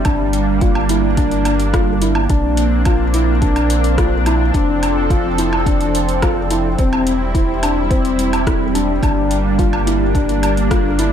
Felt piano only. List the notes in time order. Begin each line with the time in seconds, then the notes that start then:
0.05 D4
0.61 F4
0.90 E4
1.17 D4
1.74 F4
2.02 E4
2.30 D4
2.86 F4
3.14 E4
3.42 D4
3.98 F4
4.26 E4
4.54 D4
5.10 F4
5.38 E4
5.66 D4
6.23 F4
6.51 E4
6.79 C4
7.35 E4
7.63 D4
7.90 C4
8.47 E4
8.75 D4
9.03 D4
9.59 F4
9.87 E4
10.15 D4
10.71 F4
10.99 E4